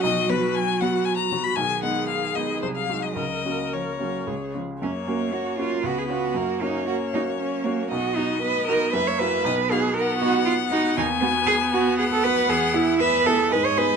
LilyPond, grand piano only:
\new Staff \with { instrumentName = "Grand piano" } { \time 3/4 \key fis \major \tempo 4 = 116 b,,8 <fis b fis'>4 <fis b fis'>4 <fis b fis'>8 | b,,8 <gis b dis'>4 <gis b dis'>8 bis,,8 <gis dis' fis'>8 | cis,8 <ais cis' fis'>4 <ais cis' fis'>8 cis,8 <gis cis' eis'>8 | fis,8 <ais cis' fis'>4 <ais cis' fis'>8 cis,8 <b cis' eis'>8 |
fis,8 <ais cis' fis'>4 <ais cis' fis'>4 <ais cis' fis'>8 | b,,8 <b dis' fis'>4 <b dis' fis'>8 fis,8 <ais e' fis'>8 | b,,8 <b dis' fis'>4 <b dis' fis'>4 <b dis' fis'>8 | \key e \major dis,8 <b fis'>4 <b fis'>4 <b fis'>8 |
e,8 <b e' gis'>4 <b e' gis'>8 gis,8 <b dis' gis'>8 | }